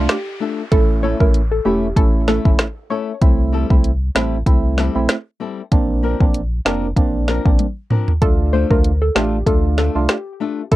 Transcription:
Already playing: synth stab A3 D4 F4, downlifter
0.09 synth pluck G4, cross-stick, snare, closed hi-hat
0.40 nylon-string guitar A3 D4 F4 A4
0.71 sub bass A1, synth stab A3 C#4 E4, synth pluck A4, kick, closed hi-hat
1.03 nylon-string guitar A3 C#4 E4 A4, synth pluck C#5
1.20 sub bass A1, synth stab A3 C#4 E4, synth pluck A#4, kick
1.34 closed hi-hat
1.52 synth pluck A4
1.65 sub bass E1, nylon-string guitar A3 C#4 E4 A4, synth stab A3 C#4 E4, synth pluck G4
1.96 sub bass A1, synth stab A3 C#4 E4, synth pluck A4, kick, closed hi-hat
2.28 nylon-string guitar A3 C#4 E4 A4, synth pluck A4, snare
2.45 sub bass G1, synth stab A3 C#4 E4, kick
2.59 cross-stick, snare, closed hi-hat
2.90 nylon-string guitar A3 C#4 E4 A4, synth pluck C#5
3.21 sub bass C2, synth stab A3 C4 E4, kick, closed hi-hat
3.52 nylon-string guitar G3 C4 E4 A4
3.70 sub bass C2, synth stab A3 C4 E4, kick
3.84 closed hi-hat
4.15 sub bass A1, nylon-string guitar G3 C4 E4 A4, synth stab A3 C4 E4, snare
4.46 sub bass C2, synth stab A3 C4 E4, kick, closed hi-hat
4.77 nylon-string guitar G3 C4 E4 A4, snare
4.95 sub bass A#1, synth stab A3 C4 E4
5.09 cross-stick, snare, closed hi-hat
5.40 nylon-string guitar G3 C4 E4 A4
5.71 sub bass A#1, synth stab A#3 C4 D4, kick, closed hi-hat
6.03 nylon-string guitar F3 C4 D4 A#4
6.20 sub bass A#1, synth stab A#3 C4 D4, kick
6.34 closed hi-hat
6.65 sub bass F1, nylon-string guitar F3 C4 D4 A#4, synth stab A#3 C4 D4, snare
6.96 sub bass A#1, synth stab A#3 C4 D4, kick, closed hi-hat
7.28 nylon-string guitar F3 C4 D4 A#4, snare
7.45 sub bass A1, synth stab A#3 C4 D4, kick
7.59 closed hi-hat, high tom
7.90 nylon-string guitar F3 C4 D4 A#4, mid tom
8.08 floor tom
8.22 sub bass D2, synth stab A3 D4 F4, synth pluck A4, kick, closed hi-hat
8.53 nylon-string guitar A3 D4 F4 A4, synth pluck C5
8.70 sub bass D2, synth stab A3 D4 F4, synth pluck A#4, kick
8.84 closed hi-hat
9.02 synth pluck A4
9.15 sub bass A1, nylon-string guitar A3 D4 F4 A4, synth stab A3 D4 F4, synth pluck G4, snare
9.46 sub bass D2, synth stab A3 D4 F4, synth pluck A4, kick, closed hi-hat
9.78 nylon-string guitar A3 D4 F4 A4, synth pluck A4, snare
9.95 sub bass C2, synth stab A3 D4 F4
10.09 synth pluck G4, cross-stick, snare, closed hi-hat
10.40 nylon-string guitar A3 D4 F4 A4
10.71 sub bass A1, synth stab A3 C#4 E4, synth pluck A4, kick, closed hi-hat

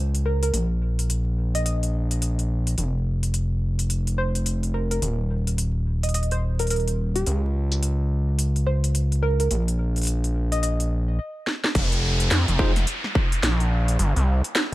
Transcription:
Already playing: analog synth bass C#2
0.15 closed hi-hat
0.26 synth pluck A#4
0.43 synth pluck A#4, closed hi-hat
0.53 analog synth bass A#1, closed hi-hat
0.99 closed hi-hat
1.10 closed hi-hat
1.55 synth pluck D#5, closed hi-hat
1.66 synth pluck D#5, closed hi-hat
1.83 closed hi-hat
2.11 closed hi-hat
2.22 closed hi-hat
2.39 closed hi-hat
2.67 closed hi-hat
2.78 analog synth bass F1, closed hi-hat
3.23 closed hi-hat
3.34 closed hi-hat
3.79 closed hi-hat
3.90 closed hi-hat
4.07 closed hi-hat
4.18 synth pluck C5
4.35 closed hi-hat
4.46 closed hi-hat
4.63 closed hi-hat
4.74 synth pluck A#4
4.91 synth pluck A#4, closed hi-hat
5.02 analog synth bass D#1, closed hi-hat
5.47 closed hi-hat
5.58 closed hi-hat
6.03 synth pluck D#5, closed hi-hat
6.09 closed hi-hat
6.14 synth pluck D#5, closed hi-hat
6.23 closed hi-hat
6.31 synth pluck C5, closed hi-hat
6.59 synth pluck A#4, closed hi-hat
6.61 closed hi-hat
6.67 closed hi-hat
6.70 synth pluck A#4, closed hi-hat
6.76 closed hi-hat
6.80 closed hi-hat
6.88 closed hi-hat
7.15 synth pluck G4, closed hi-hat
7.27 analog synth bass C#2, closed hi-hat
7.72 closed hi-hat
7.83 closed hi-hat
8.39 closed hi-hat
8.56 closed hi-hat
8.67 synth pluck C5
8.84 closed hi-hat
8.95 closed hi-hat
9.12 closed hi-hat
9.23 synth pluck A#4
9.40 synth pluck A#4, closed hi-hat
9.51 analog synth bass A#1, closed hi-hat
9.68 closed hi-hat
9.96 closed hi-hat
9.98 closed hi-hat
10.02 closed hi-hat
10.03 closed hi-hat
10.05 closed hi-hat
10.07 closed hi-hat
10.24 closed hi-hat
10.52 synth pluck D#5, closed hi-hat
10.63 synth pluck D#5, closed hi-hat
10.80 closed hi-hat
11.47 snare
11.64 snare
11.75 analog synth bass F1, kick, closed hi-hat, crash, downlifter
11.92 closed hi-hat
12.20 closed hi-hat
12.31 analog synth bass F2, snare, closed hi-hat
12.48 analog synth bass F1, closed hi-hat
12.59 tine electric piano D#4 F4 G#4 C5, kick
12.76 snare, closed hi-hat
12.87 closed hi-hat
13.04 snare
13.15 kick
13.32 closed hi-hat
13.43 analog synth bass A#1, snare, closed hi-hat
13.60 closed hi-hat
13.88 closed hi-hat
13.99 analog synth bass G1, closed hi-hat
14.16 analog synth bass C2, closed hi-hat
14.44 closed hi-hat
14.55 snare, closed hi-hat

